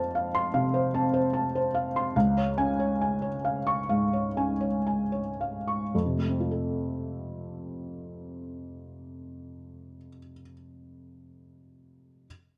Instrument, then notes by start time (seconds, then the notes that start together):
felt piano
Already playing: F2 C4 C5 F5 A5
0.15 F5
0.35 C6
0.54 C3 F5
0.74 C5
0.94 C4 A5
1.14 C5
1.33 A5
1.55 C5
1.74 F5
1.96 C6
2.16 C#2 F5
2.37 C#5
2.58 C#4 G#5
2.79 C#5
3.01 G#5
3.22 C#5
3.45 F5
3.67 C#6
3.89 G#2 F5
4.13 C#5
4.37 C#4 G#5
4.61 C#5
4.87 G#5
5.12 C#5
5.41 F5
5.67 C#6
5.95 F2
6.06 C3
6.17 A3
6.29 C4
6.40 F4
6.51 A4